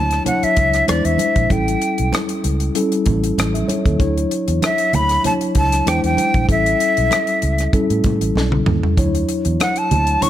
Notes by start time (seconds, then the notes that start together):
Already playing: D2 F#3 D4 E4 C#5 A5
0.11 cross-stick, closed hi-hat
0.24 F#3 D4 E4 C#5 F#5, closed hi-hat, muted conga, low conga
0.43 E5, muted fingered electric bass stroke, closed hi-hat
0.57 C#2, kick, closed hi-hat, muted conga
0.73 cross-stick, closed hi-hat
0.87 E2 G#3 D4 E4 C5 D5, cross-stick, closed hi-hat, high conga
1.05 E2 E5, closed hi-hat, high conga
1.18 closed hi-hat, high conga
1.36 A#1, kick, closed hi-hat
1.50 A1 G3 C#4 E4 A4 G5, kick, closed hi-hat, muted conga
1.68 closed hi-hat
1.82 closed hi-hat
1.98 B1, closed hi-hat
2.13 cross-stick, closed hi-hat, high conga
2.29 closed hi-hat
2.44 C#2, closed hi-hat, muted conga
2.60 closed hi-hat
2.75 G3 C#4 E4 A4, closed hi-hat, muted conga
2.92 closed hi-hat
3.06 A1, kick, closed hi-hat, muted conga, low conga
3.24 closed hi-hat
3.38 A1, cross-stick, closed hi-hat, high conga
3.54 E5, closed hi-hat, high conga
3.68 C#5, closed hi-hat, high conga
3.86 D#2 A4, kick, closed hi-hat
3.98 D2 F#3 D4 E4 C#5, kick, closed hi-hat, muted conga
4.18 closed hi-hat
4.31 closed hi-hat
4.48 E2, closed hi-hat
4.62 E5, cross-stick, closed hi-hat, high conga
4.78 closed hi-hat
4.93 D2 B5, closed hi-hat, low conga
5.09 cross-stick, closed hi-hat
5.24 F#3 D4 E4 C#5 A5, closed hi-hat, muted conga, low conga
5.41 closed hi-hat
5.55 C#2 A5, kick, closed hi-hat, muted conga
5.72 cross-stick, closed hi-hat
5.86 E2 G#3 D4 E4 C5 G5, cross-stick, closed hi-hat, high conga
6.04 E2 G5, closed hi-hat, high conga
6.17 closed hi-hat, high conga
6.34 A#1, kick, closed hi-hat
6.48 A1 G3 C#4 E4 A4 E5, kick, closed hi-hat, muted conga
6.66 closed hi-hat
6.80 closed hi-hat
6.97 B1, closed hi-hat
7.11 cross-stick, closed hi-hat, high conga
7.27 closed hi-hat
7.42 C#2, closed hi-hat, muted conga
7.58 cross-stick, closed hi-hat
7.73 G3 C#4 E4 A4, kick, closed hi-hat, muted conga
7.90 A2, closed hi-hat
8.04 A2, kick, closed hi-hat, muted conga, low conga
8.21 A1, closed hi-hat
8.35 B1, snare, high conga
8.52 high tom, high conga
8.66 D#2, mid tom, high conga
8.83 floor tom
8.97 D2 F#3 D4 E4 C#5, kick, closed hi-hat, muted conga
9.15 closed hi-hat
9.29 closed hi-hat
9.45 E2, closed hi-hat
9.60 F#5, cross-stick, closed hi-hat, high conga
9.76 A5, closed hi-hat
9.91 D2, closed hi-hat, muted conga, low conga
10.07 closed hi-hat
10.21 F#3 D4 E4 C#5 C#6, closed hi-hat, muted conga, low conga